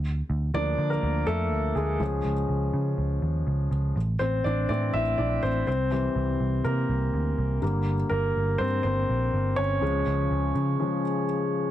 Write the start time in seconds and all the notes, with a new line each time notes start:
Already playing: D2
0.30 D2
0.54 D2 F3 A#3 D4 D5
0.78 D3
0.90 A#3 A#4
1.03 D2
1.27 F2 A3 A4
1.52 D2
1.75 D2 G#3 G#4
2.00 C#2 F3 G#3 C#4
2.25 C#2
2.49 C#2
2.74 C#3
2.98 C#2
3.22 D#2
3.47 C#2
3.71 C#2
3.96 A1
4.19 A1 C4 C5
4.44 A1 D4 D5
4.69 A2 E3 A3 C4 D4 D5
4.94 A1 E4 E5
5.18 A#1 D4 D5
5.43 A1 C4 C5
5.67 C2 C4 C5
5.91 E3 G3 C4
6.16 C2
6.40 C2
6.64 C3 A#3 A#4
6.89 C2
7.14 D2
7.38 C2
7.62 G1 D3 G3 A#3
8.10 G1 A#3 A#4
8.36 G1
8.58 G2 C4 C5
8.83 G1 C4 C5
9.09 A#1
9.33 G1
9.56 G1 C#4 C#5
9.81 C#2 C#3 F3 G#3
10.07 C#2
10.31 C#2
10.55 C#3
10.80 C#3 F3 G#3